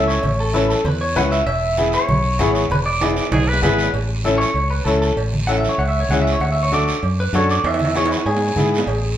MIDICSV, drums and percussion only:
0, 0, Header, 1, 2, 480
1, 0, Start_track
1, 0, Key_signature, 3, "major"
1, 0, Tempo, 308801
1, 362, Time_signature, 4, 2, 24, 8
1, 14260, End_track
2, 0, Start_track
2, 0, Title_t, "Drums"
2, 145, Note_on_c, 9, 73, 70
2, 300, Note_off_c, 9, 73, 0
2, 355, Note_on_c, 9, 56, 104
2, 366, Note_on_c, 9, 63, 36
2, 366, Note_on_c, 9, 64, 73
2, 392, Note_on_c, 9, 74, 71
2, 510, Note_off_c, 9, 56, 0
2, 521, Note_off_c, 9, 63, 0
2, 521, Note_off_c, 9, 64, 0
2, 548, Note_off_c, 9, 74, 0
2, 827, Note_on_c, 9, 56, 70
2, 844, Note_on_c, 9, 63, 89
2, 866, Note_on_c, 9, 73, 72
2, 982, Note_off_c, 9, 56, 0
2, 999, Note_off_c, 9, 63, 0
2, 1022, Note_off_c, 9, 73, 0
2, 1093, Note_on_c, 9, 73, 76
2, 1248, Note_off_c, 9, 73, 0
2, 1318, Note_on_c, 9, 56, 87
2, 1322, Note_on_c, 9, 63, 35
2, 1322, Note_on_c, 9, 64, 84
2, 1339, Note_on_c, 9, 74, 67
2, 1474, Note_off_c, 9, 56, 0
2, 1478, Note_off_c, 9, 63, 0
2, 1478, Note_off_c, 9, 64, 0
2, 1494, Note_off_c, 9, 74, 0
2, 1800, Note_on_c, 9, 56, 67
2, 1800, Note_on_c, 9, 66, 72
2, 1803, Note_on_c, 9, 63, 77
2, 1807, Note_on_c, 9, 73, 73
2, 1956, Note_off_c, 9, 56, 0
2, 1956, Note_off_c, 9, 66, 0
2, 1958, Note_off_c, 9, 63, 0
2, 1963, Note_off_c, 9, 73, 0
2, 2042, Note_on_c, 9, 73, 65
2, 2198, Note_off_c, 9, 73, 0
2, 2279, Note_on_c, 9, 56, 104
2, 2285, Note_on_c, 9, 74, 71
2, 2288, Note_on_c, 9, 63, 34
2, 2434, Note_off_c, 9, 56, 0
2, 2440, Note_off_c, 9, 74, 0
2, 2444, Note_off_c, 9, 63, 0
2, 2753, Note_on_c, 9, 56, 70
2, 2758, Note_on_c, 9, 73, 75
2, 2766, Note_on_c, 9, 63, 86
2, 2909, Note_off_c, 9, 56, 0
2, 2913, Note_off_c, 9, 73, 0
2, 2922, Note_off_c, 9, 63, 0
2, 2987, Note_on_c, 9, 73, 74
2, 3143, Note_off_c, 9, 73, 0
2, 3241, Note_on_c, 9, 74, 68
2, 3244, Note_on_c, 9, 63, 37
2, 3244, Note_on_c, 9, 64, 86
2, 3246, Note_on_c, 9, 56, 86
2, 3397, Note_off_c, 9, 74, 0
2, 3400, Note_off_c, 9, 63, 0
2, 3400, Note_off_c, 9, 64, 0
2, 3401, Note_off_c, 9, 56, 0
2, 3717, Note_on_c, 9, 73, 74
2, 3719, Note_on_c, 9, 56, 70
2, 3719, Note_on_c, 9, 66, 70
2, 3722, Note_on_c, 9, 63, 83
2, 3873, Note_off_c, 9, 73, 0
2, 3874, Note_off_c, 9, 56, 0
2, 3874, Note_off_c, 9, 66, 0
2, 3878, Note_off_c, 9, 63, 0
2, 3963, Note_on_c, 9, 73, 73
2, 4118, Note_off_c, 9, 73, 0
2, 4195, Note_on_c, 9, 74, 73
2, 4209, Note_on_c, 9, 56, 103
2, 4219, Note_on_c, 9, 63, 36
2, 4219, Note_on_c, 9, 64, 74
2, 4351, Note_off_c, 9, 74, 0
2, 4365, Note_off_c, 9, 56, 0
2, 4374, Note_off_c, 9, 63, 0
2, 4374, Note_off_c, 9, 64, 0
2, 4680, Note_on_c, 9, 63, 86
2, 4683, Note_on_c, 9, 56, 69
2, 4683, Note_on_c, 9, 65, 82
2, 4684, Note_on_c, 9, 73, 75
2, 4835, Note_off_c, 9, 63, 0
2, 4838, Note_off_c, 9, 56, 0
2, 4838, Note_off_c, 9, 65, 0
2, 4839, Note_off_c, 9, 73, 0
2, 4918, Note_on_c, 9, 73, 77
2, 5001, Note_on_c, 9, 65, 70
2, 5074, Note_off_c, 9, 73, 0
2, 5156, Note_off_c, 9, 65, 0
2, 5160, Note_on_c, 9, 56, 83
2, 5160, Note_on_c, 9, 65, 99
2, 5162, Note_on_c, 9, 63, 37
2, 5162, Note_on_c, 9, 64, 85
2, 5165, Note_on_c, 9, 74, 73
2, 5315, Note_off_c, 9, 56, 0
2, 5315, Note_off_c, 9, 65, 0
2, 5317, Note_off_c, 9, 63, 0
2, 5317, Note_off_c, 9, 64, 0
2, 5321, Note_off_c, 9, 74, 0
2, 5487, Note_on_c, 9, 66, 87
2, 5642, Note_on_c, 9, 63, 82
2, 5642, Note_on_c, 9, 64, 71
2, 5643, Note_off_c, 9, 66, 0
2, 5648, Note_on_c, 9, 56, 70
2, 5648, Note_on_c, 9, 66, 95
2, 5650, Note_on_c, 9, 73, 73
2, 5797, Note_off_c, 9, 63, 0
2, 5797, Note_off_c, 9, 64, 0
2, 5804, Note_off_c, 9, 56, 0
2, 5804, Note_off_c, 9, 66, 0
2, 5805, Note_off_c, 9, 73, 0
2, 5884, Note_on_c, 9, 73, 70
2, 5953, Note_on_c, 9, 66, 87
2, 6040, Note_off_c, 9, 73, 0
2, 6109, Note_off_c, 9, 66, 0
2, 6120, Note_on_c, 9, 56, 99
2, 6132, Note_on_c, 9, 74, 63
2, 6276, Note_off_c, 9, 56, 0
2, 6288, Note_off_c, 9, 74, 0
2, 6599, Note_on_c, 9, 63, 83
2, 6611, Note_on_c, 9, 73, 71
2, 6754, Note_off_c, 9, 63, 0
2, 6766, Note_off_c, 9, 73, 0
2, 6856, Note_on_c, 9, 73, 72
2, 7012, Note_off_c, 9, 73, 0
2, 7078, Note_on_c, 9, 56, 82
2, 7114, Note_on_c, 9, 74, 63
2, 7234, Note_off_c, 9, 56, 0
2, 7269, Note_off_c, 9, 74, 0
2, 7559, Note_on_c, 9, 63, 78
2, 7572, Note_on_c, 9, 73, 69
2, 7715, Note_off_c, 9, 63, 0
2, 7728, Note_off_c, 9, 73, 0
2, 7805, Note_on_c, 9, 73, 64
2, 7961, Note_off_c, 9, 73, 0
2, 8038, Note_on_c, 9, 56, 99
2, 8059, Note_on_c, 9, 74, 69
2, 8194, Note_off_c, 9, 56, 0
2, 8214, Note_off_c, 9, 74, 0
2, 8278, Note_on_c, 9, 64, 75
2, 8433, Note_off_c, 9, 64, 0
2, 8524, Note_on_c, 9, 63, 79
2, 8529, Note_on_c, 9, 73, 70
2, 8679, Note_off_c, 9, 63, 0
2, 8684, Note_off_c, 9, 73, 0
2, 8758, Note_on_c, 9, 63, 66
2, 8773, Note_on_c, 9, 73, 68
2, 8914, Note_off_c, 9, 63, 0
2, 8929, Note_off_c, 9, 73, 0
2, 9009, Note_on_c, 9, 56, 83
2, 9022, Note_on_c, 9, 74, 64
2, 9164, Note_off_c, 9, 56, 0
2, 9178, Note_off_c, 9, 74, 0
2, 9479, Note_on_c, 9, 63, 78
2, 9479, Note_on_c, 9, 64, 75
2, 9487, Note_on_c, 9, 66, 72
2, 9505, Note_on_c, 9, 73, 68
2, 9634, Note_off_c, 9, 63, 0
2, 9634, Note_off_c, 9, 64, 0
2, 9642, Note_off_c, 9, 66, 0
2, 9661, Note_off_c, 9, 73, 0
2, 9746, Note_on_c, 9, 73, 65
2, 9902, Note_off_c, 9, 73, 0
2, 9953, Note_on_c, 9, 56, 100
2, 9993, Note_on_c, 9, 74, 67
2, 10109, Note_off_c, 9, 56, 0
2, 10148, Note_off_c, 9, 74, 0
2, 10443, Note_on_c, 9, 63, 87
2, 10462, Note_on_c, 9, 73, 76
2, 10599, Note_off_c, 9, 63, 0
2, 10617, Note_off_c, 9, 73, 0
2, 10689, Note_on_c, 9, 63, 69
2, 10695, Note_on_c, 9, 73, 74
2, 10845, Note_off_c, 9, 63, 0
2, 10850, Note_off_c, 9, 73, 0
2, 10924, Note_on_c, 9, 74, 64
2, 10927, Note_on_c, 9, 56, 84
2, 11079, Note_off_c, 9, 74, 0
2, 11083, Note_off_c, 9, 56, 0
2, 11395, Note_on_c, 9, 66, 68
2, 11405, Note_on_c, 9, 73, 72
2, 11409, Note_on_c, 9, 63, 83
2, 11550, Note_off_c, 9, 66, 0
2, 11560, Note_off_c, 9, 73, 0
2, 11564, Note_off_c, 9, 63, 0
2, 11651, Note_on_c, 9, 73, 68
2, 11806, Note_off_c, 9, 73, 0
2, 11881, Note_on_c, 9, 56, 101
2, 11881, Note_on_c, 9, 65, 99
2, 11893, Note_on_c, 9, 74, 70
2, 12032, Note_off_c, 9, 65, 0
2, 12032, Note_on_c, 9, 65, 99
2, 12037, Note_off_c, 9, 56, 0
2, 12048, Note_off_c, 9, 74, 0
2, 12117, Note_on_c, 9, 64, 72
2, 12188, Note_off_c, 9, 65, 0
2, 12199, Note_on_c, 9, 65, 96
2, 12272, Note_off_c, 9, 64, 0
2, 12354, Note_off_c, 9, 65, 0
2, 12356, Note_on_c, 9, 63, 81
2, 12362, Note_on_c, 9, 65, 82
2, 12373, Note_on_c, 9, 73, 76
2, 12511, Note_off_c, 9, 63, 0
2, 12518, Note_off_c, 9, 65, 0
2, 12523, Note_on_c, 9, 65, 88
2, 12529, Note_off_c, 9, 73, 0
2, 12611, Note_on_c, 9, 73, 72
2, 12678, Note_off_c, 9, 65, 0
2, 12766, Note_off_c, 9, 73, 0
2, 12842, Note_on_c, 9, 56, 84
2, 12842, Note_on_c, 9, 66, 85
2, 12854, Note_on_c, 9, 74, 65
2, 12997, Note_off_c, 9, 56, 0
2, 12997, Note_off_c, 9, 66, 0
2, 13003, Note_on_c, 9, 66, 87
2, 13010, Note_off_c, 9, 74, 0
2, 13158, Note_off_c, 9, 66, 0
2, 13175, Note_on_c, 9, 66, 73
2, 13309, Note_on_c, 9, 63, 76
2, 13309, Note_on_c, 9, 64, 82
2, 13331, Note_off_c, 9, 66, 0
2, 13349, Note_on_c, 9, 73, 70
2, 13464, Note_off_c, 9, 63, 0
2, 13464, Note_off_c, 9, 64, 0
2, 13504, Note_off_c, 9, 73, 0
2, 13588, Note_on_c, 9, 73, 65
2, 13652, Note_on_c, 9, 66, 97
2, 13743, Note_off_c, 9, 73, 0
2, 13791, Note_on_c, 9, 56, 98
2, 13807, Note_off_c, 9, 66, 0
2, 13824, Note_on_c, 9, 74, 69
2, 13946, Note_off_c, 9, 56, 0
2, 13979, Note_off_c, 9, 74, 0
2, 14260, End_track
0, 0, End_of_file